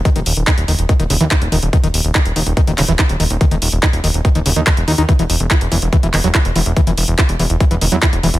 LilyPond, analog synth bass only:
\new Staff \with { instrumentName = "Analog synth bass" } { \clef bass \time 4/4 \key fes \lydian \tempo 4 = 143 r16 ees,,16 ees,,16 ees,,16 r16 ees,,16 ees,,16 ees,,16 r16 ees,,16 ees,,16 ees,16 r16 ees,,16 ees,,16 ees,,16 | r16 ees,,16 ees,,16 ees,,16 r16 ees,,16 ees,,16 ees,,16 r16 ees,,16 ees,,16 ees,,16 r16 ees,,16 ees,,16 ees,,16 | r16 ees,,16 ees,,16 ees,,16 r16 ees,,16 ees,,16 ees,,16 r16 ees,,16 ees,,16 ees,16 r16 fes,,16 ees,16 ees,16 | r16 e,,16 e,,16 e,,16 r16 e,,16 e,,16 e,,16 r16 e,,16 e,,16 e,,16 r16 e,,16 e,,16 e,,16 |
r16 e,,16 e,,16 e,,16 r16 e,,16 e,,16 e,,16 r16 e,,16 e,,16 e,16 r16 e,,16 e,,16 e,,16 | }